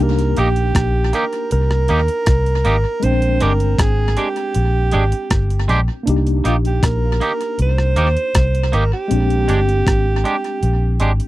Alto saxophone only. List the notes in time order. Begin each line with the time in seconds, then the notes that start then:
0.03 A#4
0.40 G4
1.15 A#4
1.52 A#4
3.04 C5
3.42 A#4
3.79 G#4
4.18 G4
6.47 F4
6.67 G4
6.85 A#4
7.62 C5
8.75 A#4
8.93 G4